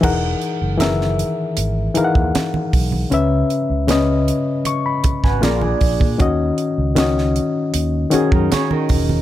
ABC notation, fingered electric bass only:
X:1
M:4/4
L:1/16
Q:1/4=78
K:Elyd
V:1 name="Fingered electric bass" clef=bass
E,,,2 z F,,,4 z G,,,2 z D,, z2 B,,,2 | C,,2 z C,,4 z4 G,,, A,,,2 A,,, A,, | D,,2 z C,,4 z D,,2 z F,, z2 E,,,2 |]